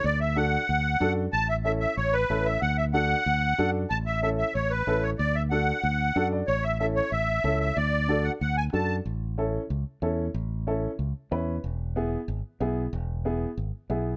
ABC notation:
X:1
M:4/4
L:1/16
Q:1/4=186
K:A
V:1 name="Accordion"
d2 e2 f8- f2 z2 | a2 e2 e2 e2 c2 B4 e2 | f2 e2 f8- f2 z2 | a2 e2 e2 e2 c2 B4 c2 |
d2 e2 f8- f2 z2 | c2 e2 e2 c2 e6 e2 | d6 f2 f2 g2 a3 z | z16 |
z16 | z16 | z16 |]
V:2 name="Upright piano"
z4 [DFA]2 z6 [DFA]2 z2 | z4 [CEA]2 z6 [CEA]2 z2 | z4 [DFA]2 z6 [DFA]2 z2 | z4 [CEA]2 z6 [CEA]2 z2 |
z4 [DFA]2 z6 [DFAf]2 d2 | z4 [CEA]2 z6 [CEA]2 z2 | z4 [DFA]2 z6 [DFA]2 z2 | z4 [CEA]2 z6 [CEA]2 z2 |
z4 [CEA]2 z6 [CEB]2 z2 | z4 [B,EG]2 z6 [B,EG]2 z2 | z4 [B,EG]2 z6 [B,EG]2 z2 |]
V:3 name="Fingered electric bass" clef=bass
D,,8 D,,4 F,,4 | A,,,8 A,,,4 A,,,4 | D,,8 D,,4 F,,4 | A,,,8 A,,,4 A,,,4 |
D,,8 D,,4 F,,4 | A,,,8 A,,,4 C,,4 | D,,8 D,,4 F,,4 | A,,,8 C,,2 z2 E,,4 |
A,,,8 C,,2 z2 E,,4 | E,,,8 G,,,2 z2 B,,,4 | E,,,8 G,,,2 z2 B,,,4 |]